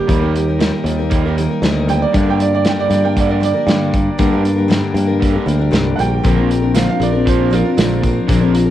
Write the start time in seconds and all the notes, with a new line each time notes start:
Already playing: G4 A#4 G5
0.07 D#2 D#3 G3 A#3 D#4 D#6, kick, closed hi-hat
0.11 A#4
0.22 A#3 D#4 A#4
0.34 D#3 G3, closed hi-hat
0.48 A#3 D#4 A#4
0.59 D#3 G3 A#3 D#4 A#4, snare, closed hi-hat
0.73 A#3 D#4 A#4
0.84 D#2 D#3 G3 A#3, closed hi-hat
0.88 D#4 A#4
0.99 A#3 D#4 A#4
1.10 D#3 G3 A#3, kick, closed hi-hat
1.25 A#3 D#4 A#4
1.37 D#3 G3 A#3 D#4, closed hi-hat
1.41 A#4
1.49 A#3 D#4 A#4
1.62 D2 D#3 G3 A#3 D#4 A#4, snare, closed hi-hat
1.88 D#3 G3 A#3 D#4 A#4 G5, closed hi-hat
2.02 D5
2.13 G2 D3 G3 A#3 D4 A#4 D5 D6, kick, closed hi-hat
2.28 G3 A#3 D4 A#4 G5
2.40 G2 D3 D5, closed hi-hat
2.53 G3 A#3 D4 A#4 D5
2.65 G2 D3 G3 A#3 D4 A#4, snare, closed hi-hat
2.69 G5
2.80 D5
2.90 G2 D3 G3 A#3 D4 A#4, closed hi-hat
2.94 D5
3.03 G3 A#3 D4 A#4 G5
3.16 G2 D3 G3 D5, kick, closed hi-hat
3.29 G3 A#3 D4 A#4 D5
3.40 G2 D3 G3 A#3 D4 A#4, closed hi-hat
3.44 D5
3.54 G3 A#3 D4 A#4
3.67 G2 D3 G3 A#3 D4 A#4, snare, closed hi-hat
3.92 G2 D3 G3 A#3 D4, kick, closed hi-hat
3.96 A#4
4.18 G2 D3 G3 A#3 D4 A#4, kick, closed hi-hat
4.31 G3 A#3 D4 A#4
4.43 G2 D3, closed hi-hat
4.56 G3 A#3 D4 A#4
4.68 G2 D3 G3 A#3 D4 A#4, snare, closed hi-hat
4.94 G2 D3 G3 A#3 D4 A#4, closed hi-hat
5.07 A#3 D4 A#4
5.11 G3
5.20 G2 D3 G3, kick, closed hi-hat
5.33 G3 A#3 D4 A#4
5.46 D2 G2 D3 G3 A#3 D4 A#4, closed hi-hat
5.58 G3 A#3 D4 A#4
5.71 C2 G2 D3 G3 A#3 D4 A#4, snare, closed hi-hat
5.96 A#1 G2 D3 G3 A#3 D4 F#5, closed hi-hat
6.00 A#4 G5
6.23 A#1 A#2 D3 F3 A#3 C4 D4 A#4 C5 A#5, kick, closed hi-hat
6.36 F3 C4 D4 A#4
6.50 A#2 F3, closed hi-hat
6.62 F3 C4 D4 A#4
6.74 A#2 D3 F3 C4 D4 A#4 F5, snare, closed hi-hat, tambourine
6.88 F3 C4 D4 A#4 F5
7.00 A#1 A#2 F3 C4 D4 A#4 D5, closed hi-hat
7.12 F3 C4 D4 A#4
7.26 A#2 F3 A#3 C5, kick, closed hi-hat
7.37 F3 C4 D4 A#4
7.50 A#2 F3 C4 D4 F4 A#4, closed hi-hat
7.64 F3 C4 D4 A#4
7.77 A#1 A#2 D3 F3 C4 D4 A#4, snare, closed hi-hat, tambourine
8.02 A#2 F3 C4 D4, kick, closed hi-hat
8.06 A#4
8.27 A#1 A#2 D3 F3 A#3 C4 D4 A#4, kick, closed hi-hat
8.40 F3 C4 D4 A#4
8.52 A#2 F3, closed hi-hat
8.66 A#4